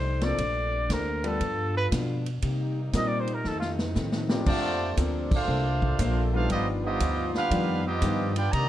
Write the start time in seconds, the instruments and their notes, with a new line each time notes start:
Already playing: upright bass C2, steel-string acoustic guitar F3 D#4 A4 D5, saxophone section G3 A3 D4 D#4, trumpet C5
0.21 grand piano F3 A#3 C4 D4 A4, trumpet D5, snare, ride
0.38 upright bass A#1, saxophone section C3 A#3 D4, steel-string acoustic guitar A#3 D4 A4 C5, kick, ride
0.90 upright bass D2, steel-string acoustic guitar A#3 D4 A4 C5, trumpet A#4, kick, snare, hi-hat pedal, ride
1.24 grand piano G3 B3 D4 F4 B4, trumpet A4, ride
1.40 steel-string acoustic guitar G2 F3 B3 D4, upright bass G2, saxophone section D3 G3 B3 F4, kick, ride
1.77 trumpet B4
1.91 steel-string acoustic guitar G2 F3 B3 D4, upright bass B2, kick, snare, hi-hat pedal, ride
2.26 ride
2.42 steel-string acoustic guitar C3 A#3 D#4 G4, upright bass C3, saxophone section C3 G3 A#3 D#4, kick, ride
2.93 upright bass A#2, steel-string acoustic guitar C3 A#3 D#4 G4, grand piano G3 A#3 C4 D#4 A#4, trumpet D#5, kick, snare, hi-hat pedal, ride
3.07 trumpet D5
3.20 trumpet C5
3.27 ride
3.34 trumpet A#4
3.44 steel-string acoustic guitar F2 D#3 A3 C4, upright bass F2, saxophone section F3 A3, trumpet A4, snare
3.59 trumpet F4, snare
3.79 snare
3.94 steel-string acoustic guitar F2 D#3 A3 C4, upright bass A2, snare, hi-hat pedal
4.12 snare
4.29 grand piano F3 A#3 C4 D4 G4, snare
4.46 upright bass F2, saxophone section A#2 C3 D4 A4, trombone section D3 F3 A3, steel-string acoustic guitar A#3 D4 A4 C5, trumpet section F4 C5 D5 A5, kick, crash
4.97 upright bass D2, grand piano F3 A#3 C4 D4 A4, steel-string acoustic guitar A#3 D4 A4 C5, kick, hi-hat pedal, ride
5.31 trombone section A3 D4 F4, trumpet section D4 A4 C5 F5, kick, crash
5.48 upright bass C2, steel-string acoustic guitar A#3 D4 A4 C5
5.82 kick
5.99 upright bass A#1, steel-string acoustic guitar A#3 D4 A4 C5, kick, hi-hat pedal, ride
6.33 grand piano D#3 G3 B3 D4 F4, trombone section A3 D4 F4, trumpet section D4 A4 C5 F5
6.49 upright bass G1, steel-string acoustic guitar G2 F3 B3 D#4, saxophone section F3 G3 B3 F4, trombone section F3 B3 D#4, trumpet section B3 F4 G4 D#5, kick, ride
6.84 trombone section F3 B3 D#4, trumpet section B3 F4 G4 D#5
7.00 upright bass D2, steel-string acoustic guitar G2 F3 B3 D#4, kick, hi-hat pedal, ride
7.35 trombone section B3 D4 F4, trumpet section D4 G4 B4 F5, snare
7.50 upright bass F2, steel-string acoustic guitar G2 F3 B3 D#4, grand piano D#3 G3 B3 D4 F4, kick, ride
7.86 trombone section F3 B3 D#4, trumpet section B3 F4 G4 D#5
8.02 upright bass G2, steel-string acoustic guitar G2 F3 B3 D#4, grand piano D#3 G3 B3 D4 G4, kick, hi-hat pedal, ride
8.36 trombone section B3 D4 G4, trumpet section F4 B4 D5 G5, ride
8.52 steel-string acoustic guitar C3 D#3 A#3 D4, upright bass C3, saxophone section C3 C4 D#4 A#4, trombone section D#3 G3 A#3, trumpet section G4 D5 D#5 A#5, kick, ride